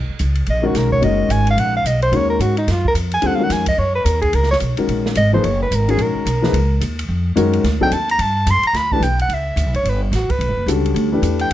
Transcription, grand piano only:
0.62 0.99 D#3 medium
0.62 1.00 G#3 medium
0.62 1.00 C#4 medium
0.62 1.00 F#4 medium
0.62 1.00 A#4 medium
1.01 1.78 D#3 medium
1.01 1.78 G#3 medium
1.01 1.78 C#4 medium
1.01 1.79 F#4 medium
1.01 1.79 A#4 medium
2.12 2.53 D#3 medium
2.12 2.54 G#3 medium
2.12 2.54 C#4 medium
2.12 2.54 F#4 medium
2.12 2.54 A#4 medium
3.22 3.38 D3 medium
3.22 3.38 G3 medium
3.22 3.38 C4 medium
3.22 3.38 F4 medium
3.22 3.38 A4 medium
3.38 3.63 D#3 medium
3.38 3.63 G#3 soft
3.38 3.64 C#4 soft
3.38 3.64 F#4 medium
3.38 3.64 A#4 medium
4.78 5.14 D#3 medium
4.78 5.14 G#3 medium
4.78 5.14 C#4 medium
4.78 5.14 F#4 medium
4.78 5.14 A#4 medium
5.33 5.43 F3 medium
5.33 5.43 A#3 medium
5.33 5.43 D#4 medium
5.33 5.43 G#4 medium
5.33 5.43 B4 medium
5.88 6.24 D#3 medium
5.88 6.24 G#3 medium
5.88 6.24 C#4 medium
5.88 6.25 F#4 medium
5.88 6.25 A#4 medium
6.42 6.52 F3 medium
6.42 6.53 A#3 medium
6.42 6.53 D#4 medium
6.42 6.53 G#4 medium
6.42 6.53 B4 medium
7.36 7.64 D#3 medium
7.36 7.64 G#3 medium
7.36 7.64 C#4 medium
7.36 7.64 F#4 medium
7.36 7.64 A#4 medium
7.81 7.90 F#3 medium
7.81 7.90 C4 medium
7.81 7.91 D4 medium
7.81 7.91 D#4 medium
7.81 7.91 A4 medium
8.92 9.01 E3 medium
8.92 9.01 A3 medium
8.92 9.01 D4 medium
8.92 9.02 G4 medium
8.92 9.02 B4 medium
10.68 11.09 D3 medium
10.68 11.09 G3 medium
10.68 11.09 C#4 medium
10.68 11.09 F#4 medium
10.68 11.09 A4 medium
11.12 11.48 E3 medium
11.12 11.48 A3 medium
11.12 11.49 D4 medium
11.12 11.49 G4 medium
11.12 11.49 B4 medium

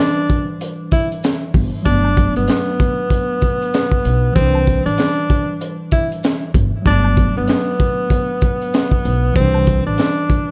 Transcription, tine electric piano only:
0.00 1.80 E3 medium
0.00 1.81 G3 medium
0.00 1.84 D4 medium
0.00 1.83 B4 medium
1.82 4.30 F#3 medium
1.82 4.32 A3 medium
1.88 4.33 B3 medium
1.88 4.34 D4 medium
4.32 6.80 E3 medium
4.32 6.81 G3 medium
4.38 6.84 D4 medium
4.38 6.83 B4 medium
6.82 9.30 F#3 medium
6.82 9.31 A3 medium
6.88 9.33 B3 medium
6.88 9.34 D4 medium
9.32 10.51 E3 medium
9.32 10.51 G3 medium
9.38 10.51 D4 medium
9.38 10.51 B4 medium

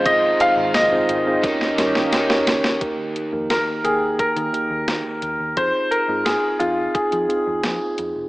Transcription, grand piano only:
0.06 0.41 D#5 loud
0.41 0.76 F5 loud
0.75 2.43 D#5 medium
3.50 3.86 A#4 medium
3.84 4.20 G#4 medium
4.20 5.62 A#4 medium
5.57 5.89 C5 loud
5.91 6.27 A#4 medium
6.25 6.61 G#4 medium
6.59 6.96 F4 medium
6.94 7.94 G#4 medium

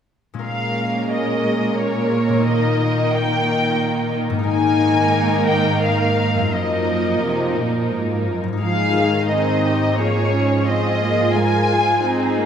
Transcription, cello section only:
0.43 4.44 A#2 soft
4.47 6.48 G#2 soft
6.52 7.15 F#2 soft
7.21 7.54 C3 soft
7.57 7.92 A#2 soft
7.92 8.27 G#2 soft
8.27 8.62 F#2 soft
8.61 12.46 G#2 soft

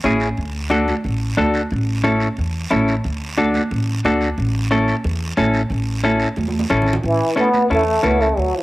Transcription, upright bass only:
0.04 0.31 A1 medium
0.38 0.91 D2 medium
1.05 1.31 A1 medium
1.38 1.65 D2 medium
1.72 2.25 A1 medium
2.38 2.65 E2 medium
2.72 2.98 A1 medium
3.05 3.58 D2 medium
3.71 3.98 A1 medium
4.04 4.31 D2 medium
4.38 4.91 A1 medium
5.05 5.31 E2 medium
5.38 5.64 A1 medium
5.70 6.24 A1 medium
6.37 6.64 E2 medium
6.71 6.97 A1 medium
7.04 7.17 A1 medium
7.71 7.97 E2 medium
8.04 8.31 C#2 medium
8.37 8.50 D2 medium

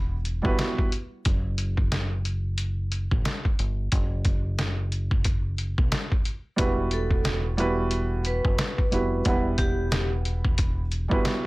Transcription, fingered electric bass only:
0.00 0.41 E1 loud
0.45 0.57 G1 medium
1.26 3.07 F#1 loud
3.12 3.24 A1 medium
3.59 3.88 G1 medium
3.93 5.74 F#1 loud
5.78 5.91 B1 medium
6.59 8.40 E1 loud
8.45 8.57 F#1 medium
8.92 9.21 F1 medium
9.26 11.07 E1 loud
11.12 11.24 G1 medium

